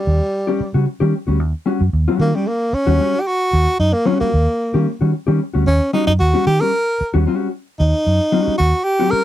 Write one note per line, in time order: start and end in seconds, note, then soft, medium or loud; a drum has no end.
0.00 0.75 G3 medium
0.07 0.19 D#2 medium
0.47 0.60 G3 medium
0.47 0.60 C#4 medium
0.47 0.60 G4 medium
0.60 muted fingered electric bass stroke soft
0.74 0.85 C#3 loud
0.74 0.85 G3 medium
0.74 0.84 C#4 soft
0.74 0.84 F#4 medium
1.00 1.12 D#3 medium
1.00 1.14 G3 medium
1.00 1.13 C#4 medium
1.00 1.13 G4 medium
1.27 1.40 D2 medium
1.27 1.38 G3 medium
1.27 1.37 C#4 medium
1.27 1.37 F#4 soft
1.40 1.52 D#2 loud
1.66 1.80 G3 medium
1.66 1.80 C#4 medium
1.66 1.81 F#4 medium
1.81 1.92 F#2 loud
1.93 2.06 D#2 loud
2.08 2.28 G3 medium
2.08 2.28 C#4 medium
2.08 2.27 F#4 medium
2.19 2.32 D#3 loud
2.19 2.37 A#3 medium
2.35 2.49 G3 medium
2.35 2.45 G3 soft
2.35 2.44 C#4 medium
2.35 2.44 G4 medium
2.47 2.75 A#3 medium
2.73 3.22 C#4 loud
2.73 muted fingered electric bass stroke soft
2.87 2.98 D#2 medium
2.87 2.98 G3 medium
2.87 3.00 C#4 medium
2.87 2.99 F#4 medium
3.00 3.13 G3 medium
3.00 3.14 C#4 medium
3.00 3.14 F#4 medium
3.21 3.29 G4 medium
3.27 3.79 F#4 loud
3.53 3.65 D#2 loud
3.79 3.92 F#2 medium
3.79 3.95 D#4 medium
3.93 4.08 A#3 loud
4.05 4.27 G3 loud
4.05 4.20 C#4 medium
4.05 4.27 C#4 medium
4.05 4.28 F#4 loud
4.20 4.97 A#3 medium
4.20 muted fingered electric bass stroke soft
4.34 4.46 D#2 medium
4.74 4.85 D#3 medium
4.74 4.87 G3 medium
4.74 4.87 C#4 medium
4.74 4.86 G4 medium
5.01 5.12 D#3 medium
5.01 5.11 G3 medium
5.01 5.11 C#4 medium
5.01 5.10 F#4 medium
5.27 5.39 D#3 loud
5.27 5.40 G3 medium
5.27 5.40 C#4 medium
5.27 5.39 G4 medium
5.54 5.65 D2 medium
5.54 5.64 G3 soft
5.54 5.64 C#4 medium
5.54 5.63 F#4 medium
5.67 5.79 D#2 loud
5.67 5.92 C#4 loud
5.93 6.07 G3 medium
5.93 6.07 C#4 medium
5.93 6.06 D#4 medium
5.93 6.08 F#4 loud
6.07 6.18 F#2 medium
6.07 6.13 D#4 medium
6.19 6.32 D#2 loud
6.19 6.44 F#4 medium
6.34 6.47 G3 medium
6.34 6.46 C#4 medium
6.34 6.46 F#4 medium
6.47 6.59 D#3 loud
6.47 6.62 G4 loud
6.60 6.71 G3 medium
6.60 6.71 C#4 medium
6.60 6.70 G4 medium
6.60 7.14 A#4 loud
7.01 muted fingered electric bass stroke soft
7.14 7.25 D#2 medium
7.14 7.25 G3 medium
7.14 7.26 C#4 medium
7.14 7.26 F#4 medium
7.26 7.46 G3 medium
7.26 7.47 C#4 medium
7.26 7.47 F#4 medium
7.79 7.92 D#2 loud
7.79 8.55 D#4 medium
8.07 8.18 F#2 medium
8.32 8.53 G3 medium
8.32 8.53 C#4 medium
8.32 8.54 F#4 medium
8.47 muted fingered electric bass stroke soft
8.58 8.72 D#2 loud
8.58 8.85 F#4 medium
8.84 9.12 G4 loud
8.99 9.20 G3 medium
8.99 9.20 C#4 medium
8.99 9.19 G4 medium
9.11 9.24 A#4 loud
9.11 muted fingered electric bass stroke soft